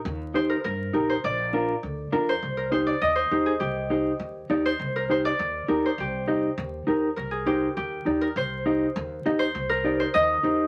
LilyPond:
<<
  \new Staff \with { instrumentName = "Harp" } { \time 4/4 \key c \minor \tempo 4 = 202 r4 c''8 bes'8 bes'4 r8 c''8 | d''2. r8 c''8~ | c''8 bes'8 c''8 d''8 ees''8 c''4 aes'8 | g'4 r2 r8 c''8~ |
c''8 bes'8 c''8 d''2 c''8 | g'2 r2 | bes'8 aes'8 g'4 g'4. bes'8 | c''4 r2 r8 c''8~ |
c''8 bes'4 c''8 ees''2 | }
  \new Staff \with { instrumentName = "Clean electric guitar" } { \time 4/4 \key c \minor r4 <ees' g' c''>8 r4. <ees' g' bes'>8 r8 | r4 <d' f' bes'>8 r4. <d' f' bes'>8 r8 | r4 <ees' g' c''>8 r4. <ees' g' c''>8 r8 | r4 <ees' g' c''>8 r4. <ees' g' d''>8 r8 |
r4 <ees' g' c''>8 r4. <ees' g' bes'>8 r8 | r4 <ees' g' ees''>8 r4. <ees' g' bes'>8 r8 | r4 <ees' g' c''>8 r4. <ees' g' d''>8 r8 | r4 <ees' g' ees''>8 r4. <ees' g' ees''>8 r8 |
r4 <ees' g' d''>8 r4. <ees' g' c''>8 r8 | }
  \new Staff \with { instrumentName = "Upright bass" } { \clef bass \time 4/4 \key c \minor ees,2 g,4 bes,,4 | bes,,2 d,4 f,4 | c,2 ees,4 ees,4 | c,2 ees,4 ees,4 |
c,2 ees,4 ees,4 | c,2 ees,4 ees,4 | c,2 ees,4 ees,4 | c,2 ees,4 ees,4 |
c,2 ees,4 ees,4 | }
>>